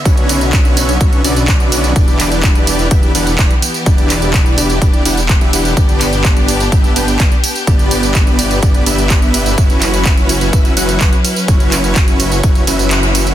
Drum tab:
RD |--x---x---x---x-|--x---x---x---x-|--x---x---x---x-|--x---x---x---x-|
HH |xxoxxxoxxxoxxxox|xxoxxxoxxxoxxxox|xxoxxxoxxxoxxxox|xxoxxxoxxxoxxxox|
TB |xxxxxxxxxxxxxxxx|xxxxxxxxxxxxxxxx|xxxxxxxxxxxxxxxx|xxxxxxxxxxxxxxxx|
CP |----x-------x---|--x-x-------x---|--x-x-------x---|--x-x-------x---|
BD |o---o---o---o---|o---o---o---o---|o---o---o---o---|o---o---o---o---|

RD |--x---x---x---x-|--x---x---x---x-|--x---x---x---x-|
HH |xxoxxxoxxxoxxxox|xxoxxxoxxxoxxxox|xxoxxxoxxxoxxxox|
TB |xxxxxxxxxxxxxxxx|xxxxxxxxxxxxxxxx|xxxxxxxxxxxxxxxx|
CP |----x-------x---|--x-x-------x---|--x-x-------x---|
BD |o---o---o---o---|o---o---o---o---|o---o---o-------|